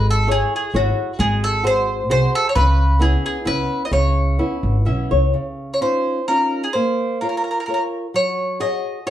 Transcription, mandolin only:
0.10 A4
0.32 G#4
0.56 G#4
0.76 F#4
1.20 G#4
1.44 A4
1.67 C5
2.11 C5
2.35 A4
2.49 C#5
2.55 B4
3.02 G#4
3.26 G#4
3.47 B4
3.85 D#5
3.93 C#5
5.74 C#5
5.82 C5
6.28 A#4
6.64 G#4
6.73 C5
7.21 A#4
7.29 A#4
7.37 A#4
7.44 A#4
7.51 A#4
7.60 A#4
7.66 A#4
7.74 A#4
8.16 C#5
8.61 D#5
9.07 C#5

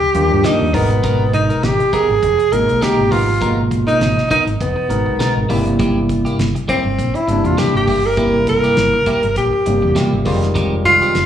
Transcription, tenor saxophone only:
Already playing: G4
0.45 D#4
0.74 B3
1.34 D#4
1.64 G4
1.93 G#4
2.52 A#4
2.83 G4
3.12 F4
3.87 D#4
4.31 D#4
4.61 B3
6.69 C4
7.15 E4
7.46 F4
7.59 G4
7.76 G4
8.06 A#4
8.49 A#4
9.37 G4
10.85 F4

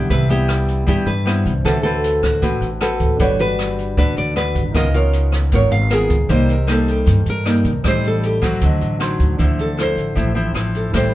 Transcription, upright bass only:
0.10 C2
0.88 G2
1.06 G2
1.46 C2
1.65 D2
2.43 A1
2.61 A1
3.00 D2
3.19 G1
3.97 D2
4.17 D2
4.55 G1
4.74 C#2
5.52 G#1
5.71 G#1
6.10 C#2
6.29 C2
7.07 G2
7.26 G2
7.65 C2
7.84 A1
8.62 D2
8.81 A1
9.20 D2
9.40 D2
9.96 A1
10.16 A1
10.54 A1
10.94 A1

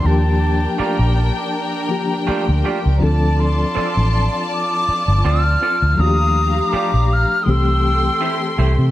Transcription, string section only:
0.04 D4 A#4 G5
3.02 F4 D5 A5
5.99 G4 F5 A#5
7.46 A4 G5 C6

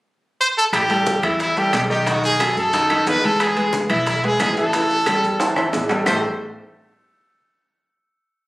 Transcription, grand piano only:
0.90 G3 G4 A4
1.23 E3 E4 E5
1.56 G3 G4 A4
1.90 D#3 D#4 D#5
2.07 D#3 D#4 D#5
2.41 F#3 F#4 A4
2.74 D#3 D#4 D#5
2.91 D#3 D#4 D#5
3.24 G#3 G#4 B4
3.57 G#3 G#4 B4
3.90 E3 E4 E5
4.24 G#3 G#4 B4
4.57 E3 E4 E5
4.74 E3 E4 E5
5.07 G3 G4 A4
5.41 E3 E4 E5
5.57 E3 E4 E5
5.90 G3 G4 A4
6.06 A3 E4 G4 A4 C5 E5

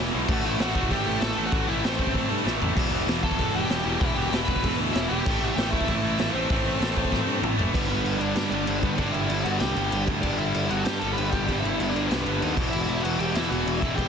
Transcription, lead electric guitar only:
0.31 F#4 F#5
0.45 E4 E5
0.61 F#4 F#5
0.91 G4 G5
1.22 A4 A5
1.46 F#4 F#5
1.68 E4 E5
1.84 C4 C5
3.24 A4 A5
3.56 G4 G5
4.00 E4 E5
4.15 G4 G5
4.30 G4 G5
4.45 B4 B5
4.93 E4 E5
5.09 G4 G5
5.56 G4 G5
5.70 E4 E5
5.85 E4 E5
6.33 C4 C5
7.74 B3 B4
7.89 B3 B4
8.20 D4 D5
8.50 D4 D5
8.66 D4 D5
8.83 B3 B4
8.97 D4 D5
9.12 E4 E5
9.44 F#4 F#5
9.60 G4 G5
10.22 D4 D5
10.38 E4 E5
10.70 F#4 F#5
10.84 G4 G5
10.99 A4 A5
11.13 B4 B5
11.30 G4 G5
11.60 E4 E5
11.90 D4 D5
12.07 B3 B4
12.70 E4 E5
12.87 E4 E5
13.03 F#4 F#5
13.19 G4 G5
13.34 E4 E5
13.49 F#4 F#5
13.80 E4 E5
13.95 G4 G5

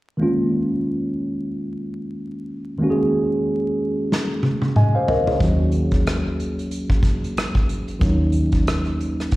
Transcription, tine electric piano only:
0.17 D#3 G#3 A#3
0.21 C#4 F4
2.78 D#3 G#3 A#3 C#4
2.84 F#4
2.90 G#4
4.76 D#5 G#5
4.95 C5 F5
5.08 A#4 D#5
5.27 G#4 C#5
5.38 D#3 F#3 A#3
5.42 C#4 F#4
7.99 D#3 F#3 A#3
8.04 C#4 D#4

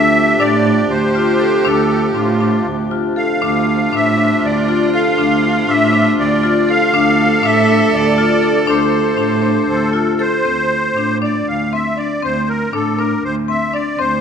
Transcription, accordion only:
Already playing: E5
0.40 D5
0.90 C5
1.65 A4
2.14 F4
3.17 F5
3.95 E5
4.45 D5
4.95 F5
5.70 E5
6.19 D5
6.70 F5
7.45 E5
7.94 D5
8.68 C5
9.70 A4
10.21 C5
11.23 D5
11.48 F5
11.73 E5
11.97 D5
12.24 C5
12.49 A#4
12.74 A4
12.98 A#4
13.24 C5
13.49 E5
13.74 D5
13.99 C5

